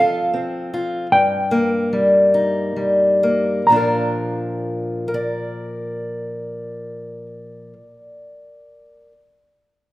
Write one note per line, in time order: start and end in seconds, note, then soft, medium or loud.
0.00 1.11 F3 medium
0.00 0.32 C4 soft
0.00 0.72 F4 soft
0.00 1.07 A4 soft
0.00 0.68 F5 medium
0.34 1.06 C4 soft
0.74 1.07 F4 soft
1.12 3.68 G2 soft
1.12 3.17 G5 medium
1.51 3.21 A#3 soft
1.93 2.75 G3 soft
2.34 3.62 D#4 soft
2.76 3.61 G3 soft
3.23 3.72 A#3 soft
3.67 7.73 A#2 soft
3.67 7.74 F3 soft
3.67 7.67 A#5 medium
3.72 5.07 D4 soft
3.72 5.14 F4 soft
3.76 5.08 A#4 soft
5.08 9.12 A#4 soft
5.14 9.18 D5 soft